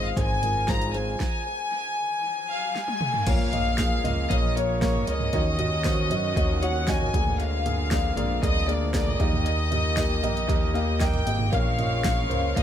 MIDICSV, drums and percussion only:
0, 0, Header, 1, 2, 480
1, 0, Start_track
1, 0, Tempo, 516351
1, 1115, Time_signature, 4, 2, 24, 8
1, 11739, End_track
2, 0, Start_track
2, 0, Title_t, "Drums"
2, 156, Note_on_c, 9, 36, 102
2, 160, Note_on_c, 9, 42, 85
2, 249, Note_off_c, 9, 36, 0
2, 253, Note_off_c, 9, 42, 0
2, 391, Note_on_c, 9, 43, 64
2, 399, Note_on_c, 9, 42, 59
2, 484, Note_off_c, 9, 43, 0
2, 492, Note_off_c, 9, 42, 0
2, 631, Note_on_c, 9, 38, 77
2, 634, Note_on_c, 9, 36, 87
2, 638, Note_on_c, 9, 42, 80
2, 724, Note_off_c, 9, 38, 0
2, 727, Note_off_c, 9, 36, 0
2, 730, Note_off_c, 9, 42, 0
2, 758, Note_on_c, 9, 42, 47
2, 851, Note_off_c, 9, 42, 0
2, 877, Note_on_c, 9, 42, 63
2, 970, Note_off_c, 9, 42, 0
2, 1115, Note_on_c, 9, 38, 73
2, 1116, Note_on_c, 9, 36, 80
2, 1208, Note_off_c, 9, 38, 0
2, 1209, Note_off_c, 9, 36, 0
2, 2562, Note_on_c, 9, 38, 48
2, 2655, Note_off_c, 9, 38, 0
2, 2678, Note_on_c, 9, 48, 55
2, 2771, Note_off_c, 9, 48, 0
2, 2796, Note_on_c, 9, 45, 80
2, 2889, Note_off_c, 9, 45, 0
2, 2917, Note_on_c, 9, 43, 93
2, 3010, Note_off_c, 9, 43, 0
2, 3035, Note_on_c, 9, 42, 85
2, 3037, Note_on_c, 9, 49, 92
2, 3038, Note_on_c, 9, 36, 102
2, 3128, Note_off_c, 9, 42, 0
2, 3129, Note_off_c, 9, 49, 0
2, 3131, Note_off_c, 9, 36, 0
2, 3280, Note_on_c, 9, 42, 51
2, 3281, Note_on_c, 9, 43, 65
2, 3373, Note_off_c, 9, 42, 0
2, 3374, Note_off_c, 9, 43, 0
2, 3513, Note_on_c, 9, 38, 110
2, 3514, Note_on_c, 9, 42, 84
2, 3519, Note_on_c, 9, 36, 108
2, 3606, Note_off_c, 9, 38, 0
2, 3607, Note_off_c, 9, 42, 0
2, 3612, Note_off_c, 9, 36, 0
2, 3761, Note_on_c, 9, 43, 62
2, 3765, Note_on_c, 9, 42, 64
2, 3854, Note_off_c, 9, 43, 0
2, 3858, Note_off_c, 9, 42, 0
2, 3999, Note_on_c, 9, 36, 106
2, 4004, Note_on_c, 9, 42, 90
2, 4092, Note_off_c, 9, 36, 0
2, 4097, Note_off_c, 9, 42, 0
2, 4250, Note_on_c, 9, 42, 63
2, 4343, Note_off_c, 9, 42, 0
2, 4480, Note_on_c, 9, 36, 89
2, 4481, Note_on_c, 9, 38, 92
2, 4487, Note_on_c, 9, 42, 84
2, 4573, Note_off_c, 9, 36, 0
2, 4574, Note_off_c, 9, 38, 0
2, 4580, Note_off_c, 9, 42, 0
2, 4602, Note_on_c, 9, 43, 63
2, 4695, Note_off_c, 9, 43, 0
2, 4717, Note_on_c, 9, 42, 70
2, 4810, Note_off_c, 9, 42, 0
2, 4836, Note_on_c, 9, 43, 68
2, 4929, Note_off_c, 9, 43, 0
2, 4954, Note_on_c, 9, 42, 80
2, 4957, Note_on_c, 9, 36, 91
2, 5047, Note_off_c, 9, 42, 0
2, 5050, Note_off_c, 9, 36, 0
2, 5194, Note_on_c, 9, 42, 57
2, 5195, Note_on_c, 9, 43, 66
2, 5287, Note_off_c, 9, 42, 0
2, 5288, Note_off_c, 9, 43, 0
2, 5431, Note_on_c, 9, 38, 97
2, 5432, Note_on_c, 9, 42, 84
2, 5437, Note_on_c, 9, 36, 109
2, 5524, Note_off_c, 9, 38, 0
2, 5525, Note_off_c, 9, 42, 0
2, 5530, Note_off_c, 9, 36, 0
2, 5675, Note_on_c, 9, 43, 62
2, 5678, Note_on_c, 9, 42, 67
2, 5768, Note_off_c, 9, 43, 0
2, 5771, Note_off_c, 9, 42, 0
2, 5916, Note_on_c, 9, 36, 124
2, 5923, Note_on_c, 9, 42, 85
2, 6009, Note_off_c, 9, 36, 0
2, 6016, Note_off_c, 9, 42, 0
2, 6160, Note_on_c, 9, 42, 63
2, 6253, Note_off_c, 9, 42, 0
2, 6391, Note_on_c, 9, 38, 100
2, 6394, Note_on_c, 9, 36, 101
2, 6397, Note_on_c, 9, 42, 83
2, 6484, Note_off_c, 9, 38, 0
2, 6487, Note_off_c, 9, 36, 0
2, 6490, Note_off_c, 9, 42, 0
2, 6518, Note_on_c, 9, 43, 62
2, 6611, Note_off_c, 9, 43, 0
2, 6636, Note_on_c, 9, 36, 105
2, 6639, Note_on_c, 9, 42, 78
2, 6729, Note_off_c, 9, 36, 0
2, 6732, Note_off_c, 9, 42, 0
2, 6757, Note_on_c, 9, 43, 63
2, 6850, Note_off_c, 9, 43, 0
2, 6876, Note_on_c, 9, 42, 76
2, 6969, Note_off_c, 9, 42, 0
2, 7119, Note_on_c, 9, 42, 58
2, 7121, Note_on_c, 9, 43, 61
2, 7212, Note_off_c, 9, 42, 0
2, 7214, Note_off_c, 9, 43, 0
2, 7353, Note_on_c, 9, 38, 104
2, 7354, Note_on_c, 9, 42, 75
2, 7355, Note_on_c, 9, 36, 105
2, 7446, Note_off_c, 9, 38, 0
2, 7447, Note_off_c, 9, 42, 0
2, 7448, Note_off_c, 9, 36, 0
2, 7594, Note_on_c, 9, 43, 58
2, 7598, Note_on_c, 9, 42, 64
2, 7687, Note_off_c, 9, 43, 0
2, 7691, Note_off_c, 9, 42, 0
2, 7834, Note_on_c, 9, 36, 113
2, 7841, Note_on_c, 9, 42, 97
2, 7927, Note_off_c, 9, 36, 0
2, 7934, Note_off_c, 9, 42, 0
2, 8078, Note_on_c, 9, 42, 64
2, 8171, Note_off_c, 9, 42, 0
2, 8309, Note_on_c, 9, 38, 95
2, 8310, Note_on_c, 9, 36, 91
2, 8315, Note_on_c, 9, 42, 96
2, 8402, Note_off_c, 9, 38, 0
2, 8403, Note_off_c, 9, 36, 0
2, 8408, Note_off_c, 9, 42, 0
2, 8435, Note_on_c, 9, 43, 60
2, 8528, Note_off_c, 9, 43, 0
2, 8551, Note_on_c, 9, 36, 103
2, 8551, Note_on_c, 9, 42, 72
2, 8644, Note_off_c, 9, 36, 0
2, 8644, Note_off_c, 9, 42, 0
2, 8677, Note_on_c, 9, 43, 70
2, 8770, Note_off_c, 9, 43, 0
2, 8793, Note_on_c, 9, 42, 84
2, 8886, Note_off_c, 9, 42, 0
2, 9034, Note_on_c, 9, 42, 48
2, 9036, Note_on_c, 9, 43, 58
2, 9127, Note_off_c, 9, 42, 0
2, 9128, Note_off_c, 9, 43, 0
2, 9266, Note_on_c, 9, 38, 115
2, 9267, Note_on_c, 9, 42, 84
2, 9271, Note_on_c, 9, 36, 111
2, 9359, Note_off_c, 9, 38, 0
2, 9360, Note_off_c, 9, 42, 0
2, 9364, Note_off_c, 9, 36, 0
2, 9512, Note_on_c, 9, 43, 59
2, 9516, Note_on_c, 9, 42, 60
2, 9605, Note_off_c, 9, 43, 0
2, 9609, Note_off_c, 9, 42, 0
2, 9639, Note_on_c, 9, 42, 56
2, 9732, Note_off_c, 9, 42, 0
2, 9750, Note_on_c, 9, 36, 127
2, 9756, Note_on_c, 9, 42, 88
2, 9843, Note_off_c, 9, 36, 0
2, 9849, Note_off_c, 9, 42, 0
2, 9996, Note_on_c, 9, 42, 64
2, 10089, Note_off_c, 9, 42, 0
2, 10229, Note_on_c, 9, 38, 90
2, 10231, Note_on_c, 9, 36, 100
2, 10235, Note_on_c, 9, 42, 86
2, 10322, Note_off_c, 9, 38, 0
2, 10324, Note_off_c, 9, 36, 0
2, 10328, Note_off_c, 9, 42, 0
2, 10351, Note_on_c, 9, 42, 45
2, 10353, Note_on_c, 9, 43, 65
2, 10444, Note_off_c, 9, 42, 0
2, 10446, Note_off_c, 9, 43, 0
2, 10475, Note_on_c, 9, 42, 74
2, 10568, Note_off_c, 9, 42, 0
2, 10590, Note_on_c, 9, 43, 74
2, 10683, Note_off_c, 9, 43, 0
2, 10716, Note_on_c, 9, 36, 92
2, 10716, Note_on_c, 9, 42, 76
2, 10809, Note_off_c, 9, 36, 0
2, 10809, Note_off_c, 9, 42, 0
2, 10956, Note_on_c, 9, 42, 54
2, 10957, Note_on_c, 9, 43, 66
2, 11049, Note_off_c, 9, 42, 0
2, 11050, Note_off_c, 9, 43, 0
2, 11195, Note_on_c, 9, 38, 108
2, 11196, Note_on_c, 9, 42, 85
2, 11197, Note_on_c, 9, 36, 109
2, 11288, Note_off_c, 9, 38, 0
2, 11289, Note_off_c, 9, 42, 0
2, 11290, Note_off_c, 9, 36, 0
2, 11439, Note_on_c, 9, 43, 66
2, 11443, Note_on_c, 9, 42, 59
2, 11532, Note_off_c, 9, 43, 0
2, 11536, Note_off_c, 9, 42, 0
2, 11680, Note_on_c, 9, 36, 124
2, 11686, Note_on_c, 9, 42, 94
2, 11739, Note_off_c, 9, 36, 0
2, 11739, Note_off_c, 9, 42, 0
2, 11739, End_track
0, 0, End_of_file